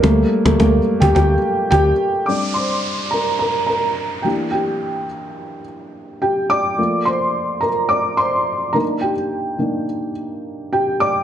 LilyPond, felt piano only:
<<
  \new Staff \with { instrumentName = "Felt piano" } { \time 4/4 \key bes \major \tempo 4 = 107 <g a bes>8 r16 <g a bes>16 <g a bes>8 r16 <g' g''>16 <g' g''>8 r8 <g' g''>8 r8 | <d'' d'''>8 <c'' c'''>4 <bes' bes''>8 <bes' bes''>8 <bes' bes''>4 <g' g''>8 | <g' g''>2 r4 <g' g''>8 <d'' d'''>8~ | <d'' d'''>8 <c'' c'''>4 <bes' bes''>8 <d'' d'''>8 <c'' c'''>4 <bes' bes''>8 |
<g' g''>2 r4 <g' g''>8 <d'' d'''>8 | }
  \new Staff \with { instrumentName = "Felt piano" } { \time 4/4 \key bes \major r1 | <g c' d'>8 r2. <e bes d'>8~ | <e bes d'>4 r2. | <f a bes>4. r2 <ees bes d'>8 |
r4 <ees bes d'>8 r2 r8 | }
>>